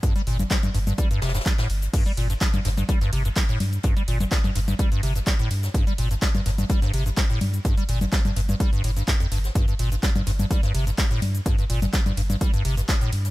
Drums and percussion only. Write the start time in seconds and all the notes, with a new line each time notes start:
0.03 kick, closed hi-hat, shaker
0.16 closed hi-hat, shaker
0.27 closed hi-hat, open hi-hat
0.39 closed hi-hat, low conga, shaker
0.51 kick, snare, clap, closed hi-hat, shaker
0.63 closed hi-hat, low conga, shaker
0.75 closed hi-hat, open hi-hat
0.87 closed hi-hat, low conga, shaker
0.98 kick, closed hi-hat, shaker
1.11 closed hi-hat, shaker
1.22 snare, closed hi-hat, open hi-hat
1.28 snare, closed hi-hat
1.35 snare, closed hi-hat, shaker
1.41 snare, closed hi-hat
1.46 kick, clap, closed hi-hat, shaker
1.58 snare, closed hi-hat, open hi-hat, shaker
1.70 open hi-hat
1.82 closed hi-hat, shaker
1.94 kick, closed hi-hat, crash, shaker
2.06 closed hi-hat, shaker
2.17 closed hi-hat, open hi-hat, ride
2.30 closed hi-hat, shaker
2.41 kick, snare, clap, closed hi-hat, shaker
2.54 closed hi-hat, low conga, shaker
2.65 snare, closed hi-hat, open hi-hat, ride
2.78 closed hi-hat, low conga, shaker
2.89 kick, closed hi-hat, shaker
3.01 snare, closed hi-hat, shaker
3.13 closed hi-hat, open hi-hat, ride
3.25 closed hi-hat, shaker
3.36 kick, snare, clap, closed hi-hat, open hi-hat, shaker
3.49 closed hi-hat, shaker
3.60 closed hi-hat, open hi-hat, ride, low conga
3.73 closed hi-hat, shaker
3.83 kick, closed hi-hat, shaker
3.97 closed hi-hat, shaker
4.08 closed hi-hat, open hi-hat, ride
4.20 closed hi-hat, low conga, shaker
4.31 kick, snare, clap, closed hi-hat, shaker
4.44 closed hi-hat, low conga, shaker
4.55 closed hi-hat, open hi-hat, ride
4.68 closed hi-hat, low conga, shaker
4.79 kick, closed hi-hat, shaker
4.92 closed hi-hat, shaker
5.03 closed hi-hat, open hi-hat, ride
5.16 closed hi-hat, shaker
5.26 kick, snare, clap, closed hi-hat, shaker
5.39 closed hi-hat, shaker
5.51 closed hi-hat, open hi-hat, ride
5.63 snare, closed hi-hat, shaker
5.74 kick, closed hi-hat, shaker
5.87 closed hi-hat, shaker
5.98 closed hi-hat, open hi-hat, ride
6.11 closed hi-hat, shaker
6.22 kick, snare, clap, closed hi-hat, shaker
6.35 closed hi-hat, low conga, shaker
6.46 snare, closed hi-hat, open hi-hat, ride
6.58 closed hi-hat, low conga, shaker
6.70 kick, closed hi-hat, shaker
6.82 snare, closed hi-hat, shaker
6.94 closed hi-hat, open hi-hat, ride
7.06 closed hi-hat, shaker
7.17 kick, snare, clap, closed hi-hat, shaker
7.30 closed hi-hat, shaker
7.41 closed hi-hat, open hi-hat, ride, low conga
7.54 closed hi-hat, shaker
7.65 kick, closed hi-hat, shaker
7.77 closed hi-hat, shaker
7.89 closed hi-hat, open hi-hat, ride
8.01 closed hi-hat, low conga, shaker
8.13 kick, snare, clap, closed hi-hat, shaker
8.25 closed hi-hat, low conga, shaker
8.36 closed hi-hat, open hi-hat, ride
8.49 closed hi-hat, low conga, shaker
8.60 kick, closed hi-hat, shaker
8.73 closed hi-hat, shaker
8.84 closed hi-hat, open hi-hat, ride
8.96 closed hi-hat, shaker
9.08 kick, snare, clap, closed hi-hat, shaker
9.20 closed hi-hat, shaker
9.32 closed hi-hat, open hi-hat, ride
9.44 snare, closed hi-hat, shaker
9.55 kick, closed hi-hat, shaker
9.68 closed hi-hat, shaker
9.79 closed hi-hat, open hi-hat, ride
9.92 closed hi-hat, shaker
10.03 kick, snare, clap, closed hi-hat, shaker
10.16 closed hi-hat, low conga, shaker
10.27 snare, closed hi-hat, open hi-hat, ride
10.39 closed hi-hat, low conga, shaker
10.51 kick, closed hi-hat, shaker
10.63 snare, closed hi-hat, shaker
10.74 closed hi-hat, open hi-hat, ride
10.87 closed hi-hat, shaker
10.98 kick, snare, clap, closed hi-hat, open hi-hat, shaker
11.11 closed hi-hat, shaker
11.22 closed hi-hat, open hi-hat, ride, low conga
11.35 closed hi-hat, shaker
11.46 kick, closed hi-hat, shaker
11.58 closed hi-hat, shaker
11.70 closed hi-hat, open hi-hat, ride
11.82 closed hi-hat, low conga, shaker
11.93 kick, snare, clap, closed hi-hat, shaker
12.06 closed hi-hat, low conga, shaker
12.17 closed hi-hat, open hi-hat, ride
12.30 closed hi-hat, low conga, shaker
12.41 kick, closed hi-hat, shaker
12.54 closed hi-hat, shaker
12.65 closed hi-hat, open hi-hat, ride
12.77 closed hi-hat, shaker
12.89 kick, snare, clap, closed hi-hat, shaker
13.01 closed hi-hat, shaker
13.12 closed hi-hat, open hi-hat, ride
13.25 snare, closed hi-hat, shaker